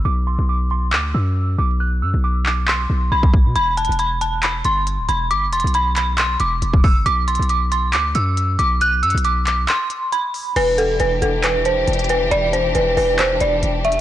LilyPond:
<<
  \new Staff \with { instrumentName = "Synth bell" } { \time 4/4 \key e \minor \tempo 4 = 137 d'''8 c'''8 d'''8 c'''8 d'''8 e'''4 d'''8 | fis'''8 e'''8 d'''8 d'''8 c'''4 b''4 | b''8 a''8 b''8 a''8 b''8 c'''4 b''8 | d'''8 c'''8 b''8 b''8 c'''8 d'''4 e'''8 |
d'''8 c'''8 d'''8 c'''8 d'''8 e'''4 d'''8 | fis'''8 e'''8 d'''8 d'''8 c'''4 b''4 | b'8 a'8 b'8 a'8 b'8 c''4 b'8 | d''8 c''8 b'8 b'8 c''8 d''4 e''8 | }
  \new Staff \with { instrumentName = "String section" } { \time 4/4 \key e \minor r1 | r1 | r1 | r1 |
r1 | r1 | <e d' g'>1~ | <e d' g'>1 | }
  \new Staff \with { instrumentName = "808-style bass" } { \clef bass \time 4/4 \key e \minor b,,8. b,,4~ b,,16 d,8 fis,4 b,,8~ | b,,8 fis,16 b,,4.~ b,,16 b,,8 b,,8. b,16 | e,,8. e,,4.~ e,,16 g,,8. d,,16 e,,8 | g,,16. e,,16. b,,4.~ b,,16 e,,8 e,,8. g,,16 |
b,,8. b,,4~ b,,16 d,8 fis,4 b,,8~ | b,,8 fis,16 b,,4~ b,,16 r2 | e,,4 e,,8 e,,4. e,,4 | e,,4 e,,8 e,,4 e,,8 e,,8. g,,16 | }
  \new DrumStaff \with { instrumentName = "Drums" } \drummode { \time 4/4 r4 r4 hc4 r4 | r4 r8 hc8 hc4 r16 bd16 bd8 | \tuplet 3/2 { hh16 r16 r16 hh16 hh16 hh16 } hh8 hh8 <hc hh>8 hh8 hh8 hh8 | \tuplet 3/2 { hh16 r16 r16 hh16 hh16 hh16 } hh8 <hc hh>8 <hc hh>8 hh8 hh16 bd16 <hho bd>8 |
\tuplet 3/2 { hh16 r16 r16 hh16 hh16 hh16 } hh8 hh8 <hc hh>8 hh8 hh8 hh8 | \tuplet 3/2 { hh16 r16 r16 hh16 hh16 hh16 } hh8 <hc hh>8 <hc hh>8 hh8 hh8 hho8 | <cymc hh>8 hh8 hh8 hh8 <hc hh>8 hh8 hh32 hh32 hh32 hh32 hh8 | hh8 hh8 hh8 hho8 <hc hh>8 hh8 \tuplet 3/2 { hh16 r16 r16 hh16 hh16 r16 } | }
>>